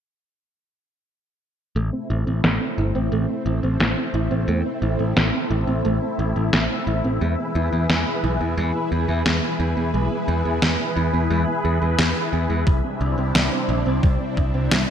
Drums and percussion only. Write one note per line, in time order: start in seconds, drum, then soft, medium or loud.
2.44 snare loud
3.80 snare loud
5.17 snare loud
6.53 snare loud
7.90 snare loud
9.26 snare loud
10.62 snare loud
11.99 snare loud
12.67 kick loud
13.35 snare loud
14.03 kick loud
14.37 kick medium
14.71 snare loud